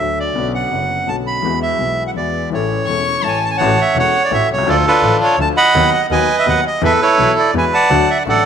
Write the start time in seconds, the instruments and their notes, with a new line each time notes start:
Already playing: upright piano D3, bandoneon E5
0.00 double bass D2, upright piano D2 F#3 A3 F#4
0.19 bandoneon D5
0.33 double bass B1, upright piano B1 B2 D3 B3 C#4
0.38 upright piano F#4
0.55 bandoneon F#5
0.70 upright piano F#1 F#2 D3 B3 C#4, double bass F#1
0.74 upright piano F#4
1.05 upright piano B1 B2 D3 B3 C#4 F#4, double bass B1, bandoneon A5
1.27 bandoneon B5
1.42 double bass E2, upright piano E2 E3 G#3 B3 F#4
1.62 bandoneon E5
1.78 double bass B1, upright piano B1 B2 E3 G#3 B3
1.82 upright piano F#4
2.07 bandoneon F#5
2.14 double bass E2, upright piano E2 E3 G#3 B3, bandoneon D5
2.18 upright piano F#4
2.50 double bass A1, upright piano A1 A2 E3 A3 C#4
2.54 upright piano A4, bandoneon C#5
2.87 double bass E1, upright piano E1 E2 E3 A3 C#4 A4, violin C#6
3.22 upright piano A1 A2 E3 A3 C#4, double bass A1, violin A5
3.26 upright piano A4, bandoneon G#5
3.45 bandoneon A5
3.51 bandoneon G#5
3.57 double bass A1, upright piano A1 A2 E3 A3 C#4, bandoneon C#5 F#5 A5
3.61 upright piano F#4
3.81 bandoneon E5
3.96 double bass E1, upright piano E1 E2 E3 A3 C#4 F#4, bandoneon C#5 F#5
4.24 bandoneon D5
4.31 double bass A1, upright piano A1 A2 E3 A3 C#4 F#4, bandoneon E5
4.49 double bass C2, bandoneon C#5
4.54 upright piano B1
4.58 upright piano C2
4.63 upright piano C#2 D2 D3 F3
4.67 double bass D2, upright piano A3 F4, bandoneon F4 A4 D5
4.87 bandoneon D4 F4 B4
5.03 double bass A1, upright piano A1 A2 D3 F3 A3 F4
5.24 bandoneon C#5
5.38 double bass D2, upright piano D2 D3 F3 A3 F4, bandoneon A5
5.57 bandoneon D#5 F#5 B5
5.74 double bass D#2, upright piano D#2 D#3 F#3 B3 F#4
5.94 bandoneon F#5
6.10 double bass D#2, upright piano D#2 D#3 F#3 B3 F#4, bandoneon B4 D#5 G#5
6.39 bandoneon E5
6.46 upright piano D#2 D#3 F#3 B3 F#4, double bass D#2, bandoneon F#5
6.67 bandoneon D#5
6.82 upright piano E2 E3 A3 B3 A4, double bass E2, bandoneon A4 B4 E5
7.02 bandoneon E4 A4 C#5
7.18 upright piano B1 B2 E3 A3 B3 A4, double bass B1
7.39 bandoneon D5
7.54 upright piano E2 E3 G#3 B3 F#4, double bass E2, bandoneon B4 G#5
7.74 bandoneon D5 F#5 A5
7.90 double bass D2, upright piano D2 D3 F#3 A3 F#4
8.10 bandoneon E5
8.26 double bass A1, upright piano A1 A2 D3 F#3 A3 F#4, bandoneon A4 D5 F#5